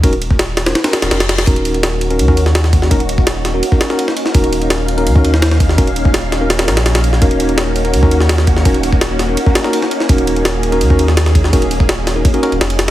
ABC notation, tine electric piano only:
X:1
M:4/4
L:1/16
Q:1/4=167
K:Ebm
V:1 name="Tine electric piano"
[DEGB] z6 [DEGB] z [DEGB]2 [DEGB]2 z3 | [DEGB]6- [DEGB] [DEGB]2 [DEGB]2 z4 z | [DEGB] z6 [DEGB] z [DEGB]2 [DEGB]2 z3 | [DEGB]6- [DEGB] [DEGB]2 [DEGB]2 z4 z |
[DEGB] z6 [DEGB] z [DEGB] [DEGB] z4 z | [DEGB]6- [DEGB] [DEGB]2 [DEGB]2 z4 z | [DEGB] z6 [DEGB] z [DEGB]2 [DEGB]2 z3 | [DEGB]6- [DEGB] [DEGB]2 [DEGB]2 z4 z |
[DEGB] z6 [DEGB] z [DEGB] [DEGB] z4 z |]